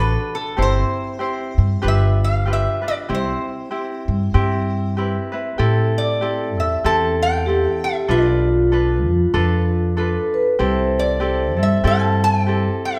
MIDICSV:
0, 0, Header, 1, 5, 480
1, 0, Start_track
1, 0, Key_signature, 0, "major"
1, 0, Tempo, 625652
1, 451, Time_signature, 4, 2, 24, 8
1, 4292, Key_signature, 0, "minor"
1, 9967, End_track
2, 0, Start_track
2, 0, Title_t, "Resonator guitar played with a steel bar"
2, 0, Program_c, 0, 25
2, 0, Note_on_c, 0, 71, 77
2, 264, Note_off_c, 0, 71, 0
2, 267, Note_on_c, 0, 69, 73
2, 468, Note_off_c, 0, 69, 0
2, 479, Note_on_c, 0, 72, 92
2, 1440, Note_off_c, 0, 72, 0
2, 1443, Note_on_c, 0, 76, 91
2, 1684, Note_off_c, 0, 76, 0
2, 1722, Note_on_c, 0, 77, 90
2, 1916, Note_off_c, 0, 77, 0
2, 1940, Note_on_c, 0, 76, 80
2, 2198, Note_off_c, 0, 76, 0
2, 2209, Note_on_c, 0, 74, 83
2, 2259, Note_off_c, 0, 74, 0
2, 2413, Note_on_c, 0, 72, 77
2, 3802, Note_off_c, 0, 72, 0
2, 4587, Note_on_c, 0, 74, 81
2, 5062, Note_on_c, 0, 76, 82
2, 5070, Note_off_c, 0, 74, 0
2, 5259, Note_off_c, 0, 76, 0
2, 5262, Note_on_c, 0, 81, 86
2, 5334, Note_off_c, 0, 81, 0
2, 5543, Note_on_c, 0, 79, 99
2, 6015, Note_on_c, 0, 76, 81
2, 6028, Note_off_c, 0, 79, 0
2, 6219, Note_off_c, 0, 76, 0
2, 6222, Note_on_c, 0, 74, 69
2, 6664, Note_off_c, 0, 74, 0
2, 8435, Note_on_c, 0, 74, 80
2, 8911, Note_off_c, 0, 74, 0
2, 8921, Note_on_c, 0, 76, 80
2, 9109, Note_on_c, 0, 81, 84
2, 9112, Note_off_c, 0, 76, 0
2, 9380, Note_off_c, 0, 81, 0
2, 9389, Note_on_c, 0, 79, 101
2, 9861, Note_on_c, 0, 76, 88
2, 9868, Note_off_c, 0, 79, 0
2, 9967, Note_off_c, 0, 76, 0
2, 9967, End_track
3, 0, Start_track
3, 0, Title_t, "Vibraphone"
3, 0, Program_c, 1, 11
3, 4287, Note_on_c, 1, 69, 97
3, 5725, Note_on_c, 1, 67, 90
3, 5771, Note_off_c, 1, 69, 0
3, 6220, Note_on_c, 1, 65, 98
3, 6222, Note_off_c, 1, 67, 0
3, 7658, Note_on_c, 1, 69, 98
3, 7696, Note_off_c, 1, 65, 0
3, 7933, Note_on_c, 1, 71, 89
3, 7935, Note_off_c, 1, 69, 0
3, 8129, Note_on_c, 1, 72, 96
3, 8139, Note_off_c, 1, 71, 0
3, 9967, Note_off_c, 1, 72, 0
3, 9967, End_track
4, 0, Start_track
4, 0, Title_t, "Ukulele"
4, 0, Program_c, 2, 24
4, 0, Note_on_c, 2, 62, 59
4, 0, Note_on_c, 2, 66, 55
4, 0, Note_on_c, 2, 69, 68
4, 435, Note_on_c, 2, 67, 73
4, 439, Note_off_c, 2, 62, 0
4, 442, Note_on_c, 2, 60, 83
4, 445, Note_off_c, 2, 69, 0
4, 446, Note_off_c, 2, 66, 0
4, 448, Note_on_c, 2, 72, 89
4, 449, Note_on_c, 2, 64, 76
4, 910, Note_off_c, 2, 67, 0
4, 912, Note_off_c, 2, 60, 0
4, 913, Note_on_c, 2, 67, 61
4, 917, Note_off_c, 2, 72, 0
4, 919, Note_off_c, 2, 64, 0
4, 921, Note_on_c, 2, 60, 64
4, 927, Note_on_c, 2, 72, 62
4, 928, Note_on_c, 2, 64, 63
4, 1391, Note_off_c, 2, 67, 0
4, 1394, Note_on_c, 2, 67, 71
4, 1397, Note_off_c, 2, 60, 0
4, 1397, Note_off_c, 2, 64, 0
4, 1400, Note_on_c, 2, 62, 87
4, 1400, Note_on_c, 2, 65, 86
4, 1403, Note_off_c, 2, 72, 0
4, 1406, Note_on_c, 2, 71, 84
4, 1881, Note_off_c, 2, 62, 0
4, 1882, Note_off_c, 2, 67, 0
4, 1885, Note_on_c, 2, 67, 51
4, 1886, Note_off_c, 2, 65, 0
4, 1890, Note_on_c, 2, 62, 52
4, 1897, Note_on_c, 2, 65, 55
4, 1898, Note_off_c, 2, 71, 0
4, 1901, Note_on_c, 2, 71, 60
4, 2152, Note_off_c, 2, 71, 0
4, 2160, Note_off_c, 2, 65, 0
4, 2161, Note_on_c, 2, 71, 44
4, 2163, Note_off_c, 2, 67, 0
4, 2166, Note_off_c, 2, 62, 0
4, 2169, Note_on_c, 2, 65, 41
4, 2177, Note_on_c, 2, 62, 40
4, 2369, Note_on_c, 2, 67, 73
4, 2370, Note_off_c, 2, 62, 0
4, 2370, Note_off_c, 2, 71, 0
4, 2373, Note_off_c, 2, 65, 0
4, 2373, Note_on_c, 2, 60, 73
4, 2376, Note_on_c, 2, 64, 75
4, 2841, Note_off_c, 2, 67, 0
4, 2843, Note_off_c, 2, 60, 0
4, 2844, Note_on_c, 2, 67, 57
4, 2846, Note_on_c, 2, 60, 62
4, 2848, Note_off_c, 2, 64, 0
4, 2851, Note_on_c, 2, 64, 63
4, 3327, Note_off_c, 2, 60, 0
4, 3328, Note_off_c, 2, 67, 0
4, 3330, Note_on_c, 2, 60, 93
4, 3331, Note_on_c, 2, 67, 89
4, 3335, Note_off_c, 2, 64, 0
4, 3338, Note_on_c, 2, 64, 89
4, 3809, Note_off_c, 2, 67, 0
4, 3812, Note_on_c, 2, 67, 62
4, 3817, Note_off_c, 2, 60, 0
4, 3818, Note_off_c, 2, 64, 0
4, 3820, Note_on_c, 2, 60, 52
4, 3821, Note_on_c, 2, 64, 66
4, 3826, Note_on_c, 2, 71, 73
4, 4072, Note_off_c, 2, 71, 0
4, 4081, Note_on_c, 2, 71, 50
4, 4082, Note_off_c, 2, 64, 0
4, 4086, Note_off_c, 2, 60, 0
4, 4086, Note_off_c, 2, 67, 0
4, 4091, Note_on_c, 2, 64, 46
4, 4095, Note_on_c, 2, 60, 41
4, 4281, Note_off_c, 2, 60, 0
4, 4281, Note_on_c, 2, 67, 82
4, 4282, Note_off_c, 2, 64, 0
4, 4288, Note_off_c, 2, 71, 0
4, 4290, Note_on_c, 2, 60, 79
4, 4291, Note_on_c, 2, 64, 93
4, 4291, Note_on_c, 2, 69, 87
4, 4755, Note_off_c, 2, 67, 0
4, 4763, Note_off_c, 2, 60, 0
4, 4764, Note_on_c, 2, 67, 62
4, 4765, Note_off_c, 2, 64, 0
4, 4772, Note_on_c, 2, 60, 67
4, 4774, Note_on_c, 2, 64, 63
4, 4776, Note_off_c, 2, 69, 0
4, 4779, Note_on_c, 2, 69, 73
4, 5241, Note_off_c, 2, 67, 0
4, 5245, Note_off_c, 2, 60, 0
4, 5247, Note_off_c, 2, 64, 0
4, 5250, Note_on_c, 2, 67, 74
4, 5254, Note_on_c, 2, 60, 80
4, 5257, Note_off_c, 2, 69, 0
4, 5257, Note_on_c, 2, 64, 75
4, 5260, Note_on_c, 2, 69, 95
4, 5722, Note_off_c, 2, 67, 0
4, 5727, Note_off_c, 2, 60, 0
4, 5731, Note_on_c, 2, 67, 47
4, 5733, Note_off_c, 2, 64, 0
4, 5736, Note_on_c, 2, 60, 50
4, 5742, Note_on_c, 2, 64, 54
4, 5743, Note_off_c, 2, 69, 0
4, 5746, Note_on_c, 2, 69, 67
4, 6198, Note_off_c, 2, 67, 0
4, 6201, Note_off_c, 2, 60, 0
4, 6202, Note_off_c, 2, 69, 0
4, 6202, Note_on_c, 2, 69, 75
4, 6204, Note_on_c, 2, 62, 77
4, 6206, Note_off_c, 2, 64, 0
4, 6209, Note_on_c, 2, 65, 90
4, 6211, Note_on_c, 2, 71, 89
4, 6683, Note_off_c, 2, 62, 0
4, 6685, Note_off_c, 2, 69, 0
4, 6686, Note_off_c, 2, 65, 0
4, 6688, Note_on_c, 2, 69, 57
4, 6690, Note_off_c, 2, 71, 0
4, 6692, Note_on_c, 2, 62, 66
4, 6695, Note_on_c, 2, 65, 64
4, 6701, Note_on_c, 2, 71, 73
4, 7154, Note_off_c, 2, 62, 0
4, 7160, Note_off_c, 2, 65, 0
4, 7161, Note_off_c, 2, 69, 0
4, 7164, Note_on_c, 2, 62, 98
4, 7164, Note_on_c, 2, 69, 87
4, 7165, Note_off_c, 2, 71, 0
4, 7169, Note_on_c, 2, 65, 92
4, 7175, Note_on_c, 2, 71, 93
4, 7641, Note_off_c, 2, 62, 0
4, 7644, Note_off_c, 2, 69, 0
4, 7647, Note_on_c, 2, 69, 65
4, 7648, Note_off_c, 2, 65, 0
4, 7650, Note_on_c, 2, 62, 70
4, 7651, Note_off_c, 2, 71, 0
4, 7659, Note_on_c, 2, 65, 61
4, 7666, Note_on_c, 2, 71, 64
4, 8121, Note_off_c, 2, 69, 0
4, 8124, Note_off_c, 2, 62, 0
4, 8124, Note_on_c, 2, 67, 79
4, 8125, Note_off_c, 2, 65, 0
4, 8127, Note_on_c, 2, 60, 79
4, 8128, Note_on_c, 2, 64, 87
4, 8132, Note_off_c, 2, 71, 0
4, 8135, Note_on_c, 2, 69, 88
4, 8583, Note_off_c, 2, 67, 0
4, 8589, Note_off_c, 2, 60, 0
4, 8592, Note_on_c, 2, 67, 67
4, 8595, Note_off_c, 2, 64, 0
4, 8598, Note_on_c, 2, 60, 67
4, 8598, Note_on_c, 2, 64, 64
4, 8601, Note_off_c, 2, 69, 0
4, 8610, Note_on_c, 2, 69, 76
4, 8864, Note_off_c, 2, 69, 0
4, 8874, Note_off_c, 2, 67, 0
4, 8874, Note_on_c, 2, 69, 46
4, 8875, Note_off_c, 2, 64, 0
4, 8877, Note_off_c, 2, 60, 0
4, 8884, Note_on_c, 2, 64, 43
4, 8890, Note_on_c, 2, 60, 34
4, 9073, Note_off_c, 2, 60, 0
4, 9077, Note_off_c, 2, 64, 0
4, 9081, Note_off_c, 2, 69, 0
4, 9081, Note_on_c, 2, 67, 78
4, 9082, Note_on_c, 2, 60, 80
4, 9086, Note_on_c, 2, 64, 84
4, 9090, Note_on_c, 2, 69, 92
4, 9554, Note_off_c, 2, 67, 0
4, 9564, Note_off_c, 2, 60, 0
4, 9564, Note_on_c, 2, 67, 58
4, 9568, Note_off_c, 2, 69, 0
4, 9571, Note_off_c, 2, 64, 0
4, 9572, Note_on_c, 2, 60, 57
4, 9574, Note_on_c, 2, 64, 51
4, 9580, Note_on_c, 2, 69, 66
4, 9967, Note_off_c, 2, 60, 0
4, 9967, Note_off_c, 2, 64, 0
4, 9967, Note_off_c, 2, 67, 0
4, 9967, Note_off_c, 2, 69, 0
4, 9967, End_track
5, 0, Start_track
5, 0, Title_t, "Upright bass"
5, 0, Program_c, 3, 32
5, 0, Note_on_c, 3, 33, 99
5, 112, Note_off_c, 3, 33, 0
5, 447, Note_on_c, 3, 31, 86
5, 627, Note_off_c, 3, 31, 0
5, 1212, Note_on_c, 3, 43, 88
5, 1344, Note_off_c, 3, 43, 0
5, 1413, Note_on_c, 3, 31, 100
5, 2037, Note_off_c, 3, 31, 0
5, 2376, Note_on_c, 3, 36, 85
5, 2553, Note_off_c, 3, 36, 0
5, 3131, Note_on_c, 3, 43, 84
5, 3263, Note_off_c, 3, 43, 0
5, 3333, Note_on_c, 3, 43, 86
5, 3957, Note_off_c, 3, 43, 0
5, 4290, Note_on_c, 3, 45, 85
5, 5051, Note_off_c, 3, 45, 0
5, 5051, Note_on_c, 3, 40, 102
5, 5183, Note_off_c, 3, 40, 0
5, 5252, Note_on_c, 3, 40, 93
5, 5875, Note_off_c, 3, 40, 0
5, 6205, Note_on_c, 3, 35, 89
5, 6964, Note_off_c, 3, 35, 0
5, 6964, Note_on_c, 3, 41, 107
5, 7097, Note_off_c, 3, 41, 0
5, 7166, Note_on_c, 3, 41, 98
5, 7790, Note_off_c, 3, 41, 0
5, 8130, Note_on_c, 3, 36, 89
5, 8879, Note_off_c, 3, 36, 0
5, 8879, Note_on_c, 3, 43, 98
5, 9014, Note_off_c, 3, 43, 0
5, 9085, Note_on_c, 3, 43, 100
5, 9709, Note_off_c, 3, 43, 0
5, 9967, End_track
0, 0, End_of_file